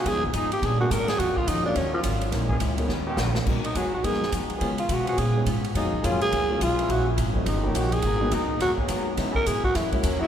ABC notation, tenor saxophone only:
X:1
M:4/4
L:1/8
Q:"Swing" 1/4=210
K:Ebm
V:1 name="Tenor saxophone"
A C E =G A _G B A | G F E =D _D F, z2 | z8 | z E G G A2 z2 |
z F G G A2 z2 | E2 F A3 F2 | G z3 E2 G A- | A2 E2 G z3 |
z B A G _F A, D F |]